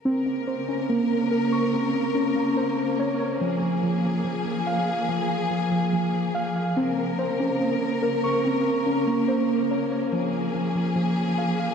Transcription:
<<
  \new Staff \with { instrumentName = "Synth keys" } { \time 4/4 \key bes \dorian \tempo 4 = 143 c'8 c'8 c''8 des'8 bes4 bes'8 des'''8 | c'8 c'8 des'8 bes8 c''4 des''8 des''8 | f8 f8 f8 f8 f8 f8 f''8 f''8 | f8 f8 f8 f8 f8 f8 f''8 f''8 |
c'8 c'8 c''8 des'8 bes4 bes'8 des'''8 | c'8 c'8 des'8 bes8 c''4 des''8 des''8 | f8 f8 f8 f8 f8 f8 f''8 f''8 | }
  \new Staff \with { instrumentName = "String section" } { \time 4/4 \key bes \dorian << { <des bes'>1~ | <des bes'>1 | <f aes'>1~ | <f aes'>1 |
<des bes'>1~ | <des bes'>1 | <f aes'>1 | } \\ { bes1~ | bes1~ | bes1~ | bes1 |
bes1~ | bes1~ | bes1 | } >> }
>>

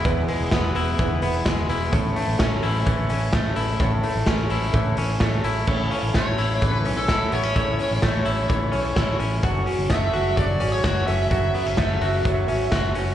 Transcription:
<<
  \new Staff \with { instrumentName = "Lead electric guitar" } { \time 4/4 \key a \major \tempo 4 = 128 r1 | r1 | r1 | r4 cis''4 b'8. a'8. cis''8~ |
cis''2.~ cis''8 r8 | r4 e''4 d''8. cis''8. e''8~ | e''2.~ e''8 r8 | }
  \new Staff \with { instrumentName = "Twelve-string acoustic guitar" } { \time 4/4 \key a \major <e gis b e' b'>8 <b e' b'>8 <gis b e' b'>8 <b e' b'>8 <e gis b e' b'>8 <b e' b'>8 <gis b e' b'>8 <b e' b'>8 | <a cis' e' a'>8 <cis' e' a'>8 <a cis' e' a'>8 <cis' e' a'>8 <a cis' e' a'>8 <cis' e' a'>8 <a cis' e' a'>8 <cis' e' a'>8 | <a cis' e' a'>8 <cis' e' a'>8 <a cis' e' a'>8 <cis' e' a'>8 <a cis' e' a'>8 <cis' e' a'>8 <a cis' e' a'>8 <e' a'>8 | <a cis' e' a'>8 <cis' e' a'>8 <a cis' e' a'>8 <cis' e' a'>8 <a cis' e' a'>8 <cis' e' a'>8 <a cis' e' a'>8 <cis' e' a'>8 |
<a cis' e' a'>8 <cis' e' a'>8 <a cis' e' a'>8 <cis' e' a'>8 <a cis' e' a'>8 <cis' e' a'>8 <a cis' e' a'>8 <cis' e' a'>8 | <fis cis' fis' a'>8 <cis' fis' a'>8 <fis cis' fis' a'>8 <cis' fis' a'>8 <fis cis' fis' a'>8 <cis' fis' a'>8 <fis cis' fis' a'>8 <cis' fis' a'>8 | <fis cis' fis' a'>8 <cis' fis' a'>8 <fis cis' fis' a'>8 <cis' fis' a'>8 <fis cis' fis' a'>8 <cis' fis' a'>8 <fis cis' fis' a'>8 <cis' fis' a'>8 | }
  \new Staff \with { instrumentName = "Clean electric guitar" } { \time 4/4 \key a \major <e, e gis b e'>8 gis8 b8 e'8 e8 b8 gis8 e'8 | a,8 a8 cis'8 e'8 e8 cis'8 a8 e'8 | a,8 a8 cis'8 e'8 e8 cis'8 a8 e'8 | <a, e'>8 cis'8 a8 e'8 e8 cis'8 e'8 b16 cis'16 |
<a, e'>8 cis'8 a8 e'8 e8 cis'8 e'8 cis'8 | <fis, fis'>8 cis'8 a8 fis'8 fis8 cis'8 fis'8 cis'8 | <fis, fis'>8 b16 cis'16 a8 fis'8 fis8 cis'8 fis'8 cis'8 | }
  \new Staff \with { instrumentName = "Fingered electric bass" } { \clef bass \time 4/4 \key a \major e,,8 r16 e,,16 e,,8 e,,8 e,,8 e,,8 e,,8 e,,8 | a,,8 r16 a,,16 a,,8 a,,8 a,,8 a,,8 a,,8 a,,8 | a,,8 r16 a,,16 a,,8 a,,8 a,,8 a,,8 a,,8 a,,8 | a,,8 r16 a,,16 a,,8 a,,8 a,,8 b,,8 a,,8 a,,8 |
a,,8 r16 a,,16 a,,8 a,,8 a,,8 b,,8 a,,8 a,,8 | fis,,8 r16 fis,,16 fis,,8 fis,,8 fis,,8 gis,,8 fis,,8 fis,,8 | fis,,8 r16 fis,,16 fis,,8 fis,,8 fis,,8 gis,,8 fis,,8 fis,,8 | }
  \new DrumStaff \with { instrumentName = "Drums" } \drummode { \time 4/4 <hh bd>8 hho8 <hh bd sn>8 hho8 <hh bd>8 hho8 <hh bd sn>8 hho8 | <hh bd>8 hho8 <hh bd sn>8 hho8 <hh bd>8 hho8 <hh bd sn>8 hho8 | <hh bd>8 hho8 <hh bd sn>8 hho8 <hh bd>8 hho8 <hh bd sn>8 hho8 | <cymc bd>8 hho8 <hh bd sn>8 hho8 <hh bd>8 hho8 <hh bd sn>8 hho8 |
<hh bd>8 hho8 <hh bd sn>8 hho8 <hh bd>8 hho8 <hh bd sn>8 hho8 | <hh bd>8 hho8 <hh bd sn>8 hho8 <hh bd>8 hho8 <hh bd sn>8 hho8 | <hh bd>8 hho8 <hh bd sn>8 hho8 <hh bd>8 hho8 <hh bd sn>8 hho8 | }
>>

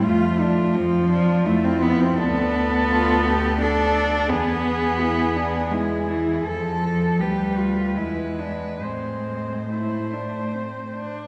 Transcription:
<<
  \new Staff \with { instrumentName = "Cello" } { \time 3/4 \key a \minor \tempo 4 = 83 f'8 f'4 f'4 f'8 | a'2 a'4 | gis'2 gis'4 | a'4 b'4 b'4 |
c''4 c''4.~ c''16 r16 | }
  \new Staff \with { instrumentName = "Cello" } { \time 3/4 \key a \minor f'8 d'8 c'8 d'8 e'4 | d'4 f'8 g'8 a'4 | gis'4 e'8 d'8 e'4 | a'4 g'8 f'8 e'8 d'8 |
c'4 e'8 d'8 c'8 d'8 | }
  \new Staff \with { instrumentName = "Cello" } { \time 3/4 \key a \minor a4 f4 a16 c'16 b16 c'16 | b2 d'4 | b2 gis8 e8 | f4 g4 gis4 |
gis4 a4. r8 | }
  \new Staff \with { instrumentName = "Cello" } { \clef bass \time 3/4 \key a \minor f,4 f,4 f,4 | d,2. | e,2. | f,4 d,4 e,4 |
a,2~ a,8. r16 | }
>>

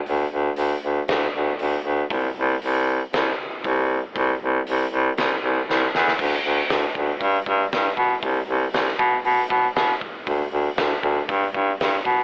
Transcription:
<<
  \new Staff \with { instrumentName = "Baritone saxophone" } { \clef bass \time 4/4 \key g \major \tempo 4 = 118 d,8 d,8 d,8 d,8 d,8 d,8 d,8 d,8 | c,8 c,8 c,4 c,8 r8 c,4 | c,8 c,8 c,8 c,8 c,8 c,8 c,8 e,8 | d,8 d,8 d,8 d,8 g,8 g,8 g,8 b,8 |
c,8 c,8 c,8 b,8 b,8 b,8 b,8 r8 | d,8 d,8 d,8 d,8 g,8 g,8 g,8 b,8 | }
  \new DrumStaff \with { instrumentName = "Drums" } \drummode { \time 4/4 hho4 hho4 <hho sn>4 hho4 | <hho bd>4 hho4 <hho sn>4 <hho bd>4 | <hho bd>4 hho4 <hho sn>4 sn8 sn16 sn16 | <cymc bd>4 <hho sn>8 bd8 <hho bd>8 bd8 <hho sn>8 bd8 |
<hho bd>4 <hho sn>16 sn16 bd8 hho8 bd8 <hho sn>8 bd8 | <hho bd>4 <hho sn>8 bd8 <hho bd>8 bd8 <hho sn>8 bd8 | }
>>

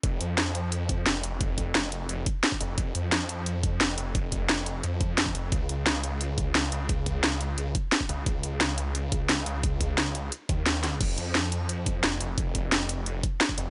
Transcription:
<<
  \new Staff \with { instrumentName = "Detuned saw bass" } { \clef bass \time 4/4 \key des \lydian \tempo 4 = 175 f,,8 f,2~ f,8 f,,8 f,,8~ | f,,4 f,,4 f,,8 r4 f,,8 | f,,8 f,2~ f,8 f,,8 f,,8~ | f,,4 f,,4 f,4. f,,8 |
des,8 des,2~ des,8 des,8 des,8~ | des,4 des,4 des,8 r4 des,8 | des,8 des,2~ des,8 des,8 des,8~ | des,4 des,4 r8 ees,4. |
f,,8 f,2~ f,8 f,,8 f,,8~ | f,,4 f,,4 f,,8 r4 f,,8 | }
  \new DrumStaff \with { instrumentName = "Drums" } \drummode { \time 4/4 <hh bd>8 hh8 <hh sn>8 hh8 hh8 <hh bd>8 <hh sn>8 hh8 | <hh bd>8 <hh bd>8 <hh sn>8 hh8 hh8 <hh bd>8 <hh sn>16 bd16 hh8 | <hh bd>8 hh8 <hh sn>8 hh8 hh8 <hh bd>8 <hh sn>8 hh8 | <hh bd>8 <hh bd>8 <hh sn>8 hh8 hh8 <hh bd>8 <hh sn>16 bd16 hh8 |
<hh bd>8 hh8 <hh sn>8 hh8 hh8 <hh bd>8 <hh sn>8 hh8 | <hh bd>8 <hh bd>8 <hh sn>8 hh8 hh8 <hh bd>8 <hh sn>16 bd16 hh8 | <hh bd>8 hh8 <hh sn>8 hh8 hh8 <hh bd>8 <hh sn>8 hh8 | <hh bd>8 <hh bd>8 <hh sn>8 hh8 hh8 <hh bd>8 <hh sn>8 <hh sn>8 |
<cymc hh bd>8 hh8 <hh sn>8 hh8 hh8 <hh bd>8 <hh sn>8 hh8 | <hh bd>8 <hh bd>8 <hh sn>8 hh8 hh8 <hh bd>8 <hh sn>16 bd16 hh8 | }
>>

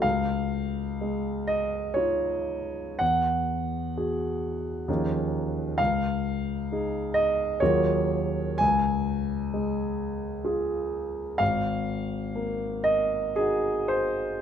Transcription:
\new Staff \with { instrumentName = "Grand piano" } { \time 3/4 \key des \major \tempo 4 = 63 << { f''4. ees''8 des''4 | fis''2. | f''4. ees''8 des''4 | aes''2. |
f''4. ees''8 aes'8 c''8 | } \\ { des,4 aes4 <ees' f'>4 | e,4 <fis' gis'>4 <ees, f des' ees' aes'>4 | des,4 <ees' aes'>4 <ees, ges bes f' aes'>4 | des,4 aes4 <f' aes'>4 |
aes,,4 bes4 <ees' ges'>4 | } >> }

